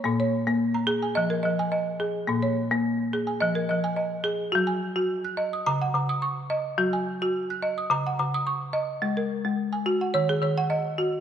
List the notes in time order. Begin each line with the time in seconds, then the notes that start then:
0.04 A#2 A#3
0.20 C#5
0.47 A#3
0.74 A#5
0.87 G#4
1.02 G#5
1.15 F3 D#5
1.30 A#4
1.43 F3 D#5
1.59 G#5
1.72 D#5
2.00 G#4
2.27 A#2 A#3
2.43 C#5
2.71 A#3
3.13 G#4
3.27 G#5
3.40 F3 D#5
3.55 A#4
3.69 F3 D#5
3.84 G#5
3.96 D#5
4.24 G#4
4.52 F#3 F#4
4.67 G#5
4.96 F#4
5.25 F#6
5.37 D#5
5.53 D#6
5.66 C#3 A#5
5.82 F#5
5.94 C#3 A#5
6.09 D#6
6.22 C#6
6.50 D#5
6.78 F#3 F#4
6.93 G#5
7.22 F#4
7.50 F#6
7.62 D#5
7.78 D#6
7.90 C#3 A#5
8.07 F#5
8.19 C#3 A#5
8.34 D#6
8.47 C#6
8.73 D#5
9.02 G#3
9.17 A#4
9.45 G#3
9.73 G#5
9.86 F#4
10.01 F#5
10.14 D#3 C#5
10.29 G#4
10.42 D#3 C#5
10.58 F#5
10.70 D#5
10.98 F#4